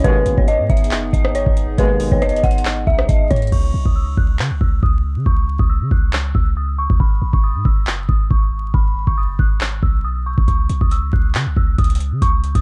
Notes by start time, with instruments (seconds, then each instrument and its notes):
0.04 808-style bass G#1, brass ensemble D#2 B2 G#3, ambient pad B3 D#4 G#4, synth bell B4, kick, closed hi-hat
0.26 808-style bass G#1, closed hi-hat
0.38 808-style bass G#1, synth bell C#5, kick
0.48 synth bell D#5, closed hi-hat
0.59 808-style bass G#2
0.70 808-style bass G#1, synth bell E5, kick, closed hi-hat
0.77 closed hi-hat
0.84 closed hi-hat
0.91 808-style bass F#1, clap, closed hi-hat
1.13 808-style bass G#1, synth bell D#5, kick, closed hi-hat
1.25 cross-stick
1.35 synth bell C#5, closed hi-hat
1.46 808-style bass G#1, kick
1.57 closed hi-hat
1.78 808-style bass G#1, brass ensemble D#2 B2 G#3, synth bell B4, kick, closed hi-hat
2.00 open hi-hat
2.12 808-style bass F#1, synth bell C#5, kick
2.22 synth bell D#5, cross-stick, closed hi-hat
2.29 closed hi-hat
2.36 closed hi-hat
2.44 808-style bass G#1, synth bell F#5, kick, closed hi-hat
2.51 closed hi-hat
2.58 closed hi-hat
2.65 clap, closed hi-hat
2.87 808-style bass B1, synth bell E5, kick
2.99 cross-stick
3.09 808-style bass G#1, synth bell D#5, kick, closed hi-hat
3.30 808-style bass G#2, synth bell C#5, kick, closed hi-hat
3.36 closed hi-hat
3.42 closed hi-hat
3.47 closed hi-hat
3.52 808-style bass C#2, synth bell C#6, kick, crash
3.74 808-style bass B1
3.85 808-style bass C#2, synth bell D#6, kick
3.96 synth bell E6
4.17 808-style bass C#2, synth bell F#6, kick
4.39 808-style bass C#3, clap
4.51 808-style bass C#2
4.61 808-style bass C#2, synth bell E6, kick
4.83 808-style bass C#2, synth bell D#6, kick
5.16 808-style bass C#3
5.26 808-style bass C#2, synth bell C#6, kick
5.59 808-style bass C#2, synth bell D#6, kick
5.70 synth bell E6
5.81 808-style bass C#3
5.91 808-style bass C#2, synth bell F#6, kick
6.13 clap
6.35 808-style bass C#2, synth bell E6, kick
6.57 synth bell D#6
6.78 synth bell C#6
6.90 808-style bass C#2, kick
7.00 808-style bass G#1, synth bell B5, kick
7.22 808-style bass G#1
7.33 808-style bass G#1, synth bell C#6, kick
7.44 synth bell D#6
7.55 808-style bass G#2
7.65 808-style bass G#1, synth bell E6, kick
7.87 808-style bass F#1, clap
8.09 808-style bass G#1, synth bell D#6, kick
8.31 808-style bass G#1, synth bell C#6, kick
8.74 808-style bass G#1, synth bell B5, kick
9.07 808-style bass F#1, synth bell C#6, kick
9.18 synth bell D#6
9.39 808-style bass G#1, synth bell F#6, kick
9.61 clap
9.83 808-style bass B1, synth bell E6, kick
10.04 synth bell D#6
10.26 synth bell C#6
10.38 808-style bass G#1, kick
10.48 808-style bass C#2, synth bell C#6, kick, closed hi-hat
10.69 808-style bass B1, closed hi-hat
10.81 808-style bass C#2, synth bell D#6, kick
10.91 synth bell E6, closed hi-hat
11.13 808-style bass C#2, synth bell F#6, kick
11.35 808-style bass C#3, clap, closed hi-hat
11.46 808-style bass C#2
11.57 808-style bass C#2, synth bell E6, kick
11.78 808-style bass C#2, synth bell D#6, kick, closed hi-hat
11.84 closed hi-hat
11.90 closed hi-hat
11.95 closed hi-hat
12.00 closed hi-hat
12.12 808-style bass C#3
12.22 808-style bass C#2, synth bell C#6, kick, closed hi-hat
12.44 closed hi-hat
12.55 808-style bass C#2, synth bell D#6, kick, closed hi-hat